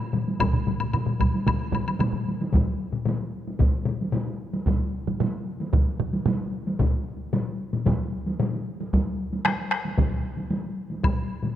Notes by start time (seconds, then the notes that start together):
0.13 taiko low-mid, taiko high
0.28 taiko high
0.40 taiko, taiko low-mid, taiko mid, taiko high, high woodblock
0.53 taiko low-mid, taiko mid
0.67 taiko low-mid, taiko mid, taiko high
0.80 taiko low-mid, taiko mid, high woodblock
0.93 taiko low-mid, taiko mid, taiko high, high woodblock
1.06 taiko low-mid, taiko mid
1.19 taiko, taiko low-mid, taiko mid, taiko high, high woodblock
1.34 taiko high
1.47 taiko, taiko low-mid, taiko mid, taiko high, high woodblock
1.72 taiko low-mid, taiko mid, taiko high, high woodblock
1.88 taiko high, high woodblock
1.99 taiko low-mid, taiko mid, taiko high, high woodblock
2.13 taiko low-mid, taiko mid
2.29 taiko high
2.41 taiko high
2.53 taiko, taiko low-mid, taiko high
2.92 taiko low-mid
3.05 taiko low-mid, taiko high
3.48 taiko high
3.59 taiko, taiko low-mid, taiko high
3.85 taiko low-mid
4.01 taiko high
4.12 taiko low-mid, taiko high
4.27 taiko high
4.53 taiko high
4.66 taiko, taiko mid, taiko high
5.08 taiko mid, taiko high
5.20 taiko mid, taiko high
5.60 taiko high
5.73 taiko, taiko mid, taiko high
6.00 taiko mid
6.13 taiko high
6.26 taiko mid, taiko high
6.41 taiko high
6.67 taiko high
6.79 taiko, taiko low-mid, taiko high
7.33 taiko low-mid, taiko high
7.73 taiko low-mid, taiko high
7.86 taiko, taiko low-mid, taiko high
8.26 taiko high
8.39 taiko low-mid, taiko high
8.53 taiko high
8.80 taiko high
8.93 taiko, taiko high
9.33 taiko high
9.45 taiko rim, taiko high
9.71 taiko rim
9.85 taiko high
9.98 taiko, taiko low-mid, taiko mid, taiko high
10.37 taiko high
10.50 taiko high
10.90 taiko high
11.03 taiko, taiko low-mid, taiko high, high woodblock
11.43 taiko low-mid, taiko high